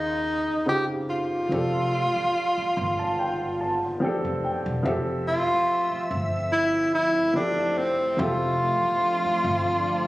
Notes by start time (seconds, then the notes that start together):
Already playing: D#2 C#3 C4 D#4 F4 A#4
0.66 C#3 C4 D#4 F4 G4
0.70 G4
1.10 F4
1.49 F1 F3 C4 D4 G4
1.54 A4
2.16 muted upright bass stroke
2.58 muted upright bass stroke
2.77 G1 C6
2.99 A5
3.19 G5
3.61 A5
4.00 F3 C4 D4 G4 G5, muted upright bass stroke
4.04 A4
4.25 F1
4.44 G5
4.66 E1
4.83 F1 F3 A3 C4 G4 E5
4.88 A4
5.27 F4
5.50 muted upright bass stroke
5.91 muted upright bass stroke
6.11 G1
6.52 E4
6.94 E4
7.33 F3 C4 D4 E4 G4
7.38 A4
7.78 C4
8.17 F1 F3 C4 D4 F4 G4 E5
8.21 A4
8.83 muted upright bass stroke
9.25 muted upright bass stroke
9.44 G1